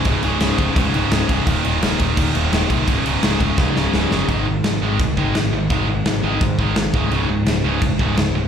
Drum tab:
CC |xxxxxxxx|xxxxxxxx|xxxx----|x-x-x-x-|
SD |--o---o-|--o---o-|--o-oooo|--o---o-|
BD |o--oo--o|o--oo--o|o--oo---|o---oo--|

CC |x-x-x-x-|x-x-x-x-|
SD |--o---o-|--o---o-|
BD |o---oo-o|----oo--|